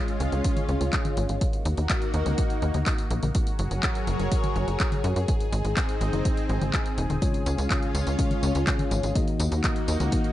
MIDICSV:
0, 0, Header, 1, 5, 480
1, 0, Start_track
1, 0, Key_signature, -5, "major"
1, 0, Tempo, 483871
1, 1402, Time_signature, 4, 2, 24, 8
1, 10241, End_track
2, 0, Start_track
2, 0, Title_t, "Analog synth pad"
2, 0, Program_c, 0, 89
2, 0, Note_on_c, 0, 56, 84
2, 0, Note_on_c, 0, 61, 77
2, 0, Note_on_c, 0, 65, 96
2, 1382, Note_off_c, 0, 61, 0
2, 1382, Note_off_c, 0, 65, 0
2, 1383, Note_off_c, 0, 56, 0
2, 1402, Note_on_c, 0, 58, 84
2, 1402, Note_on_c, 0, 63, 78
2, 1403, Note_on_c, 0, 66, 93
2, 3302, Note_off_c, 0, 63, 0
2, 3303, Note_off_c, 0, 58, 0
2, 3303, Note_off_c, 0, 66, 0
2, 3322, Note_on_c, 0, 54, 86
2, 3322, Note_on_c, 0, 66, 77
2, 3322, Note_on_c, 0, 68, 79
2, 3323, Note_on_c, 0, 70, 79
2, 3323, Note_on_c, 0, 73, 93
2, 5223, Note_off_c, 0, 54, 0
2, 5223, Note_off_c, 0, 66, 0
2, 5223, Note_off_c, 0, 70, 0
2, 5223, Note_off_c, 0, 73, 0
2, 5242, Note_on_c, 0, 63, 78
2, 5243, Note_on_c, 0, 60, 84
2, 7143, Note_off_c, 0, 60, 0
2, 7143, Note_off_c, 0, 63, 0
2, 7161, Note_on_c, 0, 61, 85
2, 7162, Note_on_c, 0, 65, 78
2, 9042, Note_off_c, 0, 68, 0
2, 9062, Note_off_c, 0, 61, 0
2, 9063, Note_off_c, 0, 65, 0
2, 9081, Note_on_c, 0, 58, 84
2, 9081, Note_on_c, 0, 63, 79
2, 9082, Note_on_c, 0, 66, 95
2, 10241, Note_off_c, 0, 58, 0
2, 10241, Note_off_c, 0, 63, 0
2, 10241, Note_off_c, 0, 66, 0
2, 10241, End_track
3, 0, Start_track
3, 0, Title_t, "Tine electric piano"
3, 0, Program_c, 1, 4
3, 7161, Note_on_c, 1, 56, 74
3, 7161, Note_on_c, 1, 61, 71
3, 7162, Note_on_c, 1, 49, 80
3, 7162, Note_on_c, 1, 65, 73
3, 7162, Note_on_c, 1, 73, 88
3, 8093, Note_off_c, 1, 49, 0
3, 8093, Note_off_c, 1, 56, 0
3, 8093, Note_off_c, 1, 61, 0
3, 8093, Note_off_c, 1, 65, 0
3, 8093, Note_off_c, 1, 73, 0
3, 8122, Note_on_c, 1, 49, 79
3, 8122, Note_on_c, 1, 56, 72
3, 8122, Note_on_c, 1, 61, 72
3, 8122, Note_on_c, 1, 65, 70
3, 8122, Note_on_c, 1, 73, 86
3, 9053, Note_off_c, 1, 49, 0
3, 9053, Note_off_c, 1, 56, 0
3, 9053, Note_off_c, 1, 61, 0
3, 9053, Note_off_c, 1, 65, 0
3, 9053, Note_off_c, 1, 73, 0
3, 9081, Note_on_c, 1, 51, 77
3, 9081, Note_on_c, 1, 58, 72
3, 9081, Note_on_c, 1, 63, 74
3, 9081, Note_on_c, 1, 66, 72
3, 9081, Note_on_c, 1, 75, 87
3, 10013, Note_off_c, 1, 51, 0
3, 10013, Note_off_c, 1, 58, 0
3, 10013, Note_off_c, 1, 63, 0
3, 10013, Note_off_c, 1, 66, 0
3, 10013, Note_off_c, 1, 75, 0
3, 10041, Note_on_c, 1, 51, 77
3, 10041, Note_on_c, 1, 58, 73
3, 10041, Note_on_c, 1, 63, 73
3, 10041, Note_on_c, 1, 75, 83
3, 10042, Note_on_c, 1, 66, 72
3, 10241, Note_off_c, 1, 51, 0
3, 10241, Note_off_c, 1, 58, 0
3, 10241, Note_off_c, 1, 63, 0
3, 10241, Note_off_c, 1, 66, 0
3, 10241, Note_off_c, 1, 75, 0
3, 10241, End_track
4, 0, Start_track
4, 0, Title_t, "Analog synth bass"
4, 0, Program_c, 2, 38
4, 202, Note_on_c, 2, 37, 96
4, 300, Note_off_c, 2, 37, 0
4, 322, Note_on_c, 2, 37, 81
4, 421, Note_off_c, 2, 37, 0
4, 682, Note_on_c, 2, 37, 93
4, 781, Note_off_c, 2, 37, 0
4, 802, Note_on_c, 2, 37, 84
4, 900, Note_off_c, 2, 37, 0
4, 1163, Note_on_c, 2, 32, 94
4, 1261, Note_off_c, 2, 32, 0
4, 1284, Note_on_c, 2, 32, 80
4, 1381, Note_off_c, 2, 32, 0
4, 1643, Note_on_c, 2, 39, 94
4, 1741, Note_off_c, 2, 39, 0
4, 1763, Note_on_c, 2, 39, 80
4, 1861, Note_off_c, 2, 39, 0
4, 2123, Note_on_c, 2, 39, 96
4, 2221, Note_off_c, 2, 39, 0
4, 2243, Note_on_c, 2, 37, 81
4, 2341, Note_off_c, 2, 37, 0
4, 2603, Note_on_c, 2, 39, 94
4, 2701, Note_off_c, 2, 39, 0
4, 2723, Note_on_c, 2, 39, 79
4, 2821, Note_off_c, 2, 39, 0
4, 3082, Note_on_c, 2, 34, 93
4, 3181, Note_off_c, 2, 34, 0
4, 3203, Note_on_c, 2, 34, 79
4, 3301, Note_off_c, 2, 34, 0
4, 3563, Note_on_c, 2, 30, 97
4, 3661, Note_off_c, 2, 30, 0
4, 3682, Note_on_c, 2, 30, 81
4, 3780, Note_off_c, 2, 30, 0
4, 4041, Note_on_c, 2, 30, 96
4, 4140, Note_off_c, 2, 30, 0
4, 4162, Note_on_c, 2, 30, 81
4, 4261, Note_off_c, 2, 30, 0
4, 4521, Note_on_c, 2, 30, 95
4, 4620, Note_off_c, 2, 30, 0
4, 4641, Note_on_c, 2, 30, 79
4, 4740, Note_off_c, 2, 30, 0
4, 5001, Note_on_c, 2, 42, 94
4, 5100, Note_off_c, 2, 42, 0
4, 5121, Note_on_c, 2, 42, 78
4, 5220, Note_off_c, 2, 42, 0
4, 5480, Note_on_c, 2, 32, 94
4, 5579, Note_off_c, 2, 32, 0
4, 5602, Note_on_c, 2, 32, 82
4, 5700, Note_off_c, 2, 32, 0
4, 5961, Note_on_c, 2, 32, 96
4, 6060, Note_off_c, 2, 32, 0
4, 6082, Note_on_c, 2, 30, 81
4, 6180, Note_off_c, 2, 30, 0
4, 6441, Note_on_c, 2, 32, 96
4, 6540, Note_off_c, 2, 32, 0
4, 6561, Note_on_c, 2, 32, 84
4, 6660, Note_off_c, 2, 32, 0
4, 6922, Note_on_c, 2, 27, 93
4, 7020, Note_off_c, 2, 27, 0
4, 7042, Note_on_c, 2, 27, 79
4, 7140, Note_off_c, 2, 27, 0
4, 7403, Note_on_c, 2, 37, 95
4, 7501, Note_off_c, 2, 37, 0
4, 7523, Note_on_c, 2, 37, 83
4, 7621, Note_off_c, 2, 37, 0
4, 7883, Note_on_c, 2, 37, 96
4, 7981, Note_off_c, 2, 37, 0
4, 8003, Note_on_c, 2, 37, 82
4, 8101, Note_off_c, 2, 37, 0
4, 8363, Note_on_c, 2, 37, 94
4, 8461, Note_off_c, 2, 37, 0
4, 8484, Note_on_c, 2, 37, 84
4, 8581, Note_off_c, 2, 37, 0
4, 8842, Note_on_c, 2, 32, 92
4, 8940, Note_off_c, 2, 32, 0
4, 8963, Note_on_c, 2, 32, 80
4, 9061, Note_off_c, 2, 32, 0
4, 9323, Note_on_c, 2, 39, 94
4, 9421, Note_off_c, 2, 39, 0
4, 9442, Note_on_c, 2, 39, 81
4, 9540, Note_off_c, 2, 39, 0
4, 9803, Note_on_c, 2, 39, 94
4, 9901, Note_off_c, 2, 39, 0
4, 9922, Note_on_c, 2, 37, 81
4, 10020, Note_off_c, 2, 37, 0
4, 10241, End_track
5, 0, Start_track
5, 0, Title_t, "Drums"
5, 81, Note_on_c, 9, 42, 39
5, 180, Note_off_c, 9, 42, 0
5, 201, Note_on_c, 9, 42, 67
5, 300, Note_off_c, 9, 42, 0
5, 321, Note_on_c, 9, 42, 41
5, 420, Note_off_c, 9, 42, 0
5, 441, Note_on_c, 9, 42, 94
5, 442, Note_on_c, 9, 36, 116
5, 540, Note_off_c, 9, 42, 0
5, 541, Note_off_c, 9, 36, 0
5, 561, Note_on_c, 9, 42, 40
5, 561, Note_on_c, 9, 48, 58
5, 660, Note_off_c, 9, 42, 0
5, 660, Note_off_c, 9, 48, 0
5, 681, Note_on_c, 9, 42, 39
5, 780, Note_off_c, 9, 42, 0
5, 801, Note_on_c, 9, 42, 40
5, 900, Note_off_c, 9, 42, 0
5, 921, Note_on_c, 9, 39, 115
5, 921, Note_on_c, 9, 42, 90
5, 922, Note_on_c, 9, 36, 117
5, 1020, Note_off_c, 9, 39, 0
5, 1020, Note_off_c, 9, 42, 0
5, 1021, Note_off_c, 9, 36, 0
5, 1041, Note_on_c, 9, 42, 41
5, 1041, Note_on_c, 9, 48, 78
5, 1140, Note_off_c, 9, 42, 0
5, 1140, Note_off_c, 9, 48, 0
5, 1161, Note_on_c, 9, 42, 68
5, 1260, Note_off_c, 9, 42, 0
5, 1281, Note_on_c, 9, 42, 40
5, 1380, Note_off_c, 9, 42, 0
5, 1401, Note_on_c, 9, 42, 90
5, 1402, Note_on_c, 9, 36, 116
5, 1500, Note_off_c, 9, 42, 0
5, 1501, Note_off_c, 9, 36, 0
5, 1521, Note_on_c, 9, 42, 40
5, 1620, Note_off_c, 9, 42, 0
5, 1641, Note_on_c, 9, 42, 65
5, 1740, Note_off_c, 9, 42, 0
5, 1761, Note_on_c, 9, 42, 39
5, 1860, Note_off_c, 9, 42, 0
5, 1881, Note_on_c, 9, 39, 122
5, 1881, Note_on_c, 9, 42, 91
5, 1882, Note_on_c, 9, 36, 127
5, 1980, Note_off_c, 9, 39, 0
5, 1980, Note_off_c, 9, 42, 0
5, 1981, Note_off_c, 9, 36, 0
5, 2001, Note_on_c, 9, 42, 38
5, 2100, Note_off_c, 9, 42, 0
5, 2121, Note_on_c, 9, 42, 64
5, 2220, Note_off_c, 9, 42, 0
5, 2241, Note_on_c, 9, 42, 39
5, 2241, Note_on_c, 9, 48, 56
5, 2340, Note_off_c, 9, 42, 0
5, 2340, Note_off_c, 9, 48, 0
5, 2360, Note_on_c, 9, 42, 95
5, 2362, Note_on_c, 9, 36, 120
5, 2460, Note_off_c, 9, 42, 0
5, 2461, Note_off_c, 9, 36, 0
5, 2481, Note_on_c, 9, 42, 39
5, 2580, Note_off_c, 9, 42, 0
5, 2601, Note_on_c, 9, 42, 36
5, 2700, Note_off_c, 9, 42, 0
5, 2720, Note_on_c, 9, 42, 41
5, 2720, Note_on_c, 9, 48, 75
5, 2819, Note_off_c, 9, 42, 0
5, 2819, Note_off_c, 9, 48, 0
5, 2841, Note_on_c, 9, 39, 116
5, 2841, Note_on_c, 9, 42, 90
5, 2842, Note_on_c, 9, 36, 122
5, 2940, Note_off_c, 9, 39, 0
5, 2940, Note_off_c, 9, 42, 0
5, 2942, Note_off_c, 9, 36, 0
5, 2961, Note_on_c, 9, 42, 39
5, 3060, Note_off_c, 9, 42, 0
5, 3081, Note_on_c, 9, 42, 66
5, 3180, Note_off_c, 9, 42, 0
5, 3200, Note_on_c, 9, 42, 41
5, 3200, Note_on_c, 9, 48, 73
5, 3300, Note_off_c, 9, 42, 0
5, 3300, Note_off_c, 9, 48, 0
5, 3320, Note_on_c, 9, 42, 87
5, 3323, Note_on_c, 9, 36, 118
5, 3419, Note_off_c, 9, 42, 0
5, 3422, Note_off_c, 9, 36, 0
5, 3440, Note_on_c, 9, 42, 38
5, 3539, Note_off_c, 9, 42, 0
5, 3560, Note_on_c, 9, 42, 62
5, 3659, Note_off_c, 9, 42, 0
5, 3681, Note_on_c, 9, 42, 37
5, 3780, Note_off_c, 9, 42, 0
5, 3800, Note_on_c, 9, 39, 124
5, 3800, Note_on_c, 9, 42, 89
5, 3802, Note_on_c, 9, 36, 126
5, 3900, Note_off_c, 9, 39, 0
5, 3900, Note_off_c, 9, 42, 0
5, 3902, Note_off_c, 9, 36, 0
5, 3921, Note_on_c, 9, 42, 38
5, 4020, Note_off_c, 9, 42, 0
5, 4041, Note_on_c, 9, 42, 63
5, 4140, Note_off_c, 9, 42, 0
5, 4161, Note_on_c, 9, 42, 38
5, 4260, Note_off_c, 9, 42, 0
5, 4281, Note_on_c, 9, 42, 93
5, 4282, Note_on_c, 9, 36, 121
5, 4381, Note_off_c, 9, 36, 0
5, 4381, Note_off_c, 9, 42, 0
5, 4402, Note_on_c, 9, 42, 37
5, 4402, Note_on_c, 9, 48, 59
5, 4501, Note_off_c, 9, 42, 0
5, 4501, Note_off_c, 9, 48, 0
5, 4521, Note_on_c, 9, 42, 36
5, 4620, Note_off_c, 9, 42, 0
5, 4641, Note_on_c, 9, 42, 39
5, 4740, Note_off_c, 9, 42, 0
5, 4761, Note_on_c, 9, 39, 123
5, 4761, Note_on_c, 9, 42, 84
5, 4762, Note_on_c, 9, 36, 124
5, 4860, Note_off_c, 9, 39, 0
5, 4860, Note_off_c, 9, 42, 0
5, 4861, Note_off_c, 9, 36, 0
5, 4881, Note_on_c, 9, 42, 39
5, 4881, Note_on_c, 9, 48, 77
5, 4980, Note_off_c, 9, 42, 0
5, 4980, Note_off_c, 9, 48, 0
5, 5001, Note_on_c, 9, 42, 62
5, 5100, Note_off_c, 9, 42, 0
5, 5121, Note_on_c, 9, 42, 37
5, 5220, Note_off_c, 9, 42, 0
5, 5241, Note_on_c, 9, 42, 85
5, 5242, Note_on_c, 9, 36, 121
5, 5340, Note_off_c, 9, 42, 0
5, 5341, Note_off_c, 9, 36, 0
5, 5361, Note_on_c, 9, 42, 38
5, 5460, Note_off_c, 9, 42, 0
5, 5481, Note_on_c, 9, 42, 63
5, 5580, Note_off_c, 9, 42, 0
5, 5601, Note_on_c, 9, 42, 37
5, 5700, Note_off_c, 9, 42, 0
5, 5721, Note_on_c, 9, 39, 124
5, 5721, Note_on_c, 9, 42, 86
5, 5722, Note_on_c, 9, 36, 124
5, 5820, Note_off_c, 9, 39, 0
5, 5820, Note_off_c, 9, 42, 0
5, 5821, Note_off_c, 9, 36, 0
5, 5841, Note_on_c, 9, 42, 36
5, 5940, Note_off_c, 9, 42, 0
5, 5962, Note_on_c, 9, 42, 61
5, 6061, Note_off_c, 9, 42, 0
5, 6082, Note_on_c, 9, 42, 38
5, 6082, Note_on_c, 9, 48, 61
5, 6181, Note_off_c, 9, 42, 0
5, 6181, Note_off_c, 9, 48, 0
5, 6202, Note_on_c, 9, 36, 119
5, 6202, Note_on_c, 9, 42, 89
5, 6301, Note_off_c, 9, 36, 0
5, 6301, Note_off_c, 9, 42, 0
5, 6322, Note_on_c, 9, 42, 37
5, 6421, Note_off_c, 9, 42, 0
5, 6442, Note_on_c, 9, 42, 36
5, 6541, Note_off_c, 9, 42, 0
5, 6562, Note_on_c, 9, 42, 38
5, 6562, Note_on_c, 9, 48, 82
5, 6661, Note_off_c, 9, 42, 0
5, 6661, Note_off_c, 9, 48, 0
5, 6681, Note_on_c, 9, 39, 119
5, 6681, Note_on_c, 9, 42, 85
5, 6682, Note_on_c, 9, 36, 123
5, 6781, Note_off_c, 9, 36, 0
5, 6781, Note_off_c, 9, 39, 0
5, 6781, Note_off_c, 9, 42, 0
5, 6802, Note_on_c, 9, 42, 37
5, 6901, Note_off_c, 9, 42, 0
5, 6922, Note_on_c, 9, 42, 64
5, 7021, Note_off_c, 9, 42, 0
5, 7042, Note_on_c, 9, 42, 38
5, 7042, Note_on_c, 9, 48, 83
5, 7141, Note_off_c, 9, 42, 0
5, 7141, Note_off_c, 9, 48, 0
5, 7162, Note_on_c, 9, 36, 113
5, 7162, Note_on_c, 9, 42, 85
5, 7162, Note_on_c, 9, 54, 29
5, 7261, Note_off_c, 9, 36, 0
5, 7262, Note_off_c, 9, 42, 0
5, 7262, Note_off_c, 9, 54, 0
5, 7283, Note_on_c, 9, 42, 38
5, 7382, Note_off_c, 9, 42, 0
5, 7403, Note_on_c, 9, 42, 62
5, 7403, Note_on_c, 9, 54, 68
5, 7502, Note_off_c, 9, 42, 0
5, 7502, Note_off_c, 9, 54, 0
5, 7523, Note_on_c, 9, 42, 38
5, 7523, Note_on_c, 9, 54, 38
5, 7622, Note_off_c, 9, 42, 0
5, 7622, Note_off_c, 9, 54, 0
5, 7642, Note_on_c, 9, 36, 118
5, 7643, Note_on_c, 9, 39, 118
5, 7643, Note_on_c, 9, 42, 85
5, 7643, Note_on_c, 9, 54, 29
5, 7741, Note_off_c, 9, 36, 0
5, 7742, Note_off_c, 9, 39, 0
5, 7742, Note_off_c, 9, 42, 0
5, 7742, Note_off_c, 9, 54, 0
5, 7762, Note_on_c, 9, 42, 37
5, 7862, Note_off_c, 9, 42, 0
5, 7882, Note_on_c, 9, 42, 61
5, 7882, Note_on_c, 9, 54, 67
5, 7982, Note_off_c, 9, 42, 0
5, 7982, Note_off_c, 9, 54, 0
5, 8002, Note_on_c, 9, 42, 38
5, 8002, Note_on_c, 9, 54, 39
5, 8101, Note_off_c, 9, 42, 0
5, 8101, Note_off_c, 9, 54, 0
5, 8122, Note_on_c, 9, 36, 114
5, 8122, Note_on_c, 9, 42, 90
5, 8122, Note_on_c, 9, 54, 30
5, 8221, Note_off_c, 9, 36, 0
5, 8221, Note_off_c, 9, 42, 0
5, 8221, Note_off_c, 9, 54, 0
5, 8241, Note_on_c, 9, 42, 37
5, 8241, Note_on_c, 9, 48, 62
5, 8341, Note_off_c, 9, 42, 0
5, 8341, Note_off_c, 9, 48, 0
5, 8361, Note_on_c, 9, 42, 35
5, 8361, Note_on_c, 9, 54, 69
5, 8460, Note_off_c, 9, 42, 0
5, 8460, Note_off_c, 9, 54, 0
5, 8481, Note_on_c, 9, 42, 37
5, 8481, Note_on_c, 9, 54, 41
5, 8580, Note_off_c, 9, 42, 0
5, 8580, Note_off_c, 9, 54, 0
5, 8601, Note_on_c, 9, 39, 117
5, 8601, Note_on_c, 9, 42, 84
5, 8601, Note_on_c, 9, 54, 29
5, 8602, Note_on_c, 9, 36, 122
5, 8701, Note_off_c, 9, 36, 0
5, 8701, Note_off_c, 9, 39, 0
5, 8701, Note_off_c, 9, 42, 0
5, 8701, Note_off_c, 9, 54, 0
5, 8721, Note_on_c, 9, 42, 38
5, 8721, Note_on_c, 9, 48, 80
5, 8820, Note_off_c, 9, 42, 0
5, 8820, Note_off_c, 9, 48, 0
5, 8841, Note_on_c, 9, 42, 64
5, 8841, Note_on_c, 9, 54, 68
5, 8940, Note_off_c, 9, 42, 0
5, 8940, Note_off_c, 9, 54, 0
5, 8961, Note_on_c, 9, 42, 38
5, 8961, Note_on_c, 9, 54, 40
5, 9060, Note_off_c, 9, 42, 0
5, 9060, Note_off_c, 9, 54, 0
5, 9081, Note_on_c, 9, 42, 90
5, 9081, Note_on_c, 9, 54, 30
5, 9082, Note_on_c, 9, 36, 110
5, 9180, Note_off_c, 9, 42, 0
5, 9180, Note_off_c, 9, 54, 0
5, 9181, Note_off_c, 9, 36, 0
5, 9201, Note_on_c, 9, 42, 40
5, 9301, Note_off_c, 9, 42, 0
5, 9321, Note_on_c, 9, 42, 64
5, 9321, Note_on_c, 9, 54, 72
5, 9420, Note_off_c, 9, 42, 0
5, 9420, Note_off_c, 9, 54, 0
5, 9441, Note_on_c, 9, 42, 40
5, 9441, Note_on_c, 9, 54, 41
5, 9540, Note_off_c, 9, 42, 0
5, 9540, Note_off_c, 9, 54, 0
5, 9561, Note_on_c, 9, 39, 111
5, 9561, Note_on_c, 9, 42, 90
5, 9561, Note_on_c, 9, 54, 30
5, 9562, Note_on_c, 9, 36, 117
5, 9661, Note_off_c, 9, 36, 0
5, 9661, Note_off_c, 9, 39, 0
5, 9661, Note_off_c, 9, 42, 0
5, 9661, Note_off_c, 9, 54, 0
5, 9681, Note_on_c, 9, 42, 38
5, 9780, Note_off_c, 9, 42, 0
5, 9801, Note_on_c, 9, 42, 64
5, 9801, Note_on_c, 9, 54, 70
5, 9900, Note_off_c, 9, 42, 0
5, 9900, Note_off_c, 9, 54, 0
5, 9921, Note_on_c, 9, 42, 37
5, 9921, Note_on_c, 9, 48, 64
5, 9921, Note_on_c, 9, 54, 42
5, 10020, Note_off_c, 9, 42, 0
5, 10020, Note_off_c, 9, 48, 0
5, 10020, Note_off_c, 9, 54, 0
5, 10041, Note_on_c, 9, 42, 93
5, 10041, Note_on_c, 9, 54, 32
5, 10042, Note_on_c, 9, 36, 112
5, 10140, Note_off_c, 9, 42, 0
5, 10140, Note_off_c, 9, 54, 0
5, 10141, Note_off_c, 9, 36, 0
5, 10161, Note_on_c, 9, 42, 38
5, 10241, Note_off_c, 9, 42, 0
5, 10241, End_track
0, 0, End_of_file